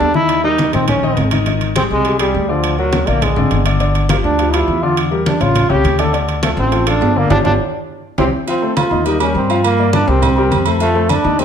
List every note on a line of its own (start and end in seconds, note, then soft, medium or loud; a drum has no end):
0.00 0.68 D#2 medium
0.00 0.14 D4 loud
0.00 high conga soft
0.00 low timbale medium
0.14 0.39 D#3 medium
0.14 0.39 D#4 medium
0.14 0.42 E4 loud
0.14 0.39 D#5 medium
0.14 high conga medium
0.29 high conga soft
0.29 high timbale medium
0.44 0.68 G3 medium
0.44 0.71 D#4 loud
0.44 0.68 G4 medium
0.44 0.68 A#4 medium
0.44 high conga soft
0.58 high conga loud
0.58 high timbale medium
0.73 1.14 A#1 loud
0.73 0.97 D#3 medium
0.73 0.87 C4 loud
0.73 0.97 D#4 medium
0.73 0.97 D#5 medium
0.73 high conga soft
0.73 high timbale medium
0.88 1.29 C#4 medium
0.88 high conga soft
0.88 low conga medium
0.88 high timbale medium
1.02 1.26 D#3 medium
1.02 1.27 D#4 medium
1.02 1.27 D#5 loud
1.02 high conga soft
1.17 1.85 G#1 medium
1.17 high conga medium
1.17 high timbale medium
1.31 1.44 D#3 medium
1.31 1.44 D#4 medium
1.31 1.44 D#5 medium
1.31 high conga medium
1.31 high timbale loud
1.46 1.70 D#3 medium
1.46 1.71 D#4 medium
1.46 1.71 D#5 medium
1.46 high conga soft
1.46 high timbale medium
1.61 high conga soft
1.61 high timbale medium
1.76 2.00 G3 medium
1.76 1.83 C4 loud
1.76 2.00 G4 medium
1.76 2.00 G#4 medium
1.76 high conga loud
1.76 high timbale loud
1.90 2.31 C2 medium
1.90 2.18 G#3 loud
2.05 2.17 G3 medium
2.05 2.17 G4 medium
2.05 2.17 G#4 medium
2.05 high conga soft
2.05 high timbale medium
2.19 2.43 G3 medium
2.19 2.51 G3 medium
2.19 2.43 G4 medium
2.19 2.44 G#4 medium
2.19 high conga soft
2.19 high timbale loud
2.34 3.02 D2 medium
2.34 high conga soft
2.49 2.72 D3 medium
2.49 2.78 F3 medium
2.49 2.73 D4 medium
2.49 2.73 D5 medium
2.64 high conga soft
2.64 high timbale medium
2.78 3.02 F#3 medium
2.78 3.09 F#3 medium
2.78 3.02 F#4 medium
2.78 3.02 A#4 medium
2.78 high conga soft
2.93 high conga loud
2.93 high timbale medium
3.07 3.34 A#1 medium
3.07 3.31 D3 medium
3.07 3.24 A#3 loud
3.07 3.31 D4 medium
3.07 3.31 D5 medium
3.07 high conga soft
3.07 high timbale medium
3.22 3.66 G#3 medium
3.22 high conga soft
3.22 low conga medium
3.22 high timbale medium
3.36 3.50 G#1 medium
3.36 3.61 D3 medium
3.36 3.61 D4 medium
3.36 3.61 D5 medium
3.36 high conga soft
3.36 low conga medium
3.51 4.18 G1 medium
3.51 high conga medium
3.51 high timbale medium
3.66 3.77 D3 medium
3.66 3.78 D4 medium
3.66 3.78 D5 medium
3.66 high timbale medium
3.80 4.04 D3 medium
3.80 4.04 D4 medium
3.80 4.04 D5 medium
3.80 high conga soft
3.80 high timbale medium
3.95 high conga soft
3.95 high timbale medium
4.09 4.33 F3 medium
4.09 4.16 A#3 medium
4.09 4.33 F4 medium
4.09 4.33 G4 medium
4.09 high conga loud
4.09 high timbale loud
4.24 4.65 D2 medium
4.24 4.54 D4 loud
4.39 4.51 F3 medium
4.39 4.51 F4 medium
4.39 4.51 G4 medium
4.39 high conga soft
4.39 high timbale medium
4.52 4.77 F3 medium
4.52 4.83 E4 medium
4.52 4.77 F4 medium
4.52 4.77 G4 medium
4.52 high conga soft
4.52 high timbale loud
4.67 5.35 E2 medium
4.67 high conga soft
4.82 5.06 D3 medium
4.82 5.06 D4 medium
4.82 4.97 F4 loud
4.82 5.07 D5 medium
4.97 high conga soft
4.97 high timbale medium
5.11 5.35 G3 medium
5.11 5.35 G4 medium
5.11 5.35 A#4 medium
5.11 high conga soft
5.26 5.43 D4 medium
5.26 high conga loud
5.26 high timbale medium
5.40 5.68 A1 medium
5.40 5.65 C#3 medium
5.40 5.65 C#4 medium
5.40 5.69 F4 loud
5.40 5.65 C#5 medium
5.40 high conga soft
5.40 high timbale medium
5.55 high conga soft
5.55 low conga medium
5.55 high timbale medium
5.69 5.83 C2 medium
5.69 5.93 C#3 medium
5.69 5.94 C#4 medium
5.69 6.01 G4 loud
5.69 5.94 C#5 loud
5.69 high conga soft
5.84 6.52 D2 medium
5.84 high conga medium
5.84 high timbale medium
5.99 6.11 D3 medium
5.99 6.11 D4 medium
5.99 6.14 A4 medium
5.99 6.11 D5 medium
5.99 high conga medium
5.99 high timbale medium
6.13 6.37 D3 medium
6.13 6.37 D4 medium
6.13 6.38 D5 medium
6.13 high conga soft
6.13 high timbale medium
6.28 high conga soft
6.28 high timbale medium
6.42 6.66 F3 medium
6.42 6.51 A3 medium
6.42 6.66 F4 medium
6.42 6.67 A4 medium
6.42 high conga loud
6.42 high timbale loud
6.57 6.98 A1 loud
6.57 6.85 C4 loud
6.71 6.84 F3 medium
6.71 6.84 F4 medium
6.71 6.84 A4 medium
6.71 high conga soft
6.71 high timbale medium
6.86 7.10 F3 medium
6.86 7.19 D4 medium
6.86 7.11 F4 medium
6.86 7.11 A4 medium
6.86 high conga soft
6.86 high timbale loud
7.01 7.28 G1 medium
7.01 high conga soft
7.01 low timbale medium
7.15 7.28 D3 medium
7.15 7.31 A#3 loud
7.15 7.28 D4 medium
7.15 7.28 D5 medium
7.30 7.41 G1 loud
7.30 7.39 D4 loud
7.30 7.38 D4 loud
7.30 7.39 F4 loud
7.30 7.40 G4 loud
7.30 high conga loud
7.30 high timbale medium
7.44 7.56 G1 loud
7.44 7.54 D4 loud
7.44 7.52 D4 loud
7.44 7.54 F4 loud
7.44 7.54 G4 loud
7.44 high conga loud
7.44 high timbale medium
8.18 8.29 C2 medium
8.18 8.25 C4 loud
8.18 8.27 C4 loud
8.18 8.27 E4 loud
8.18 8.27 G4 loud
8.18 high conga medium
8.18 high timbale medium
8.47 8.59 F3 medium
8.47 8.75 C4 loud
8.47 8.59 F4 medium
8.47 8.59 F5 medium
8.47 high conga soft
8.47 low agogo medium
8.62 8.86 A3 medium
8.62 8.86 A4 medium
8.62 8.86 C5 medium
8.62 high conga soft
8.76 9.07 F4 medium
8.76 high conga loud
8.76 low agogo loud
8.91 9.32 D#2 medium
8.91 9.03 D#3 medium
8.91 9.03 D#4 medium
8.91 9.03 D#5 medium
9.06 9.18 G3 medium
9.06 9.20 D#4 medium
9.06 9.18 G4 medium
9.06 9.18 A#4 medium
9.06 high conga soft
9.06 low agogo medium
9.20 9.44 G3 medium
9.20 9.34 C#4 medium
9.20 9.44 G4 medium
9.20 9.45 A#4 medium
9.20 high conga soft
9.20 low agogo loud
9.35 10.02 G2 medium
9.35 9.62 C4 medium
9.35 high conga soft
9.50 9.73 F3 medium
9.50 9.74 F4 medium
9.50 9.74 F5 medium
9.50 low agogo medium
9.64 9.91 A#3 loud
9.64 high conga soft
9.64 low agogo loud
9.79 10.03 A#3 medium
9.79 10.03 A#4 medium
9.79 10.03 D5 medium
9.79 high conga soft
9.93 10.09 D4 loud
9.93 high conga loud
9.93 low agogo medium
10.08 10.48 C2 loud
10.08 10.32 G3 medium
10.08 10.66 C4 loud
10.08 10.32 G4 medium
10.08 10.32 A#4 medium
10.08 high conga soft
10.22 high conga soft
10.22 low conga medium
10.22 low agogo loud
10.37 10.61 G3 medium
10.37 10.61 G4 medium
10.37 10.61 A#4 medium
10.37 high conga soft
10.51 11.19 F2 medium
10.51 high conga medium
10.51 low agogo medium
10.66 10.78 A3 medium
10.66 10.78 A4 medium
10.66 10.79 C5 medium
10.66 low agogo loud
10.80 10.93 F3 medium
10.80 11.11 A3 loud
10.80 10.93 F4 medium
10.80 10.93 F5 medium
10.80 high conga soft
10.80 low agogo medium
10.95 11.19 A3 medium
10.95 11.19 A4 medium
10.95 11.20 C5 medium
10.95 high conga soft
11.09 11.40 D4 loud
11.09 high conga medium
11.09 low agogo loud
11.24 11.45 D#2 medium
11.24 11.37 D#3 medium
11.24 11.37 D#4 medium
11.24 11.37 D#5 medium
11.39 11.45 G3 medium
11.39 11.45 C4 loud
11.39 11.45 G4 medium
11.39 11.45 A#4 medium
11.39 high conga soft
11.39 low agogo medium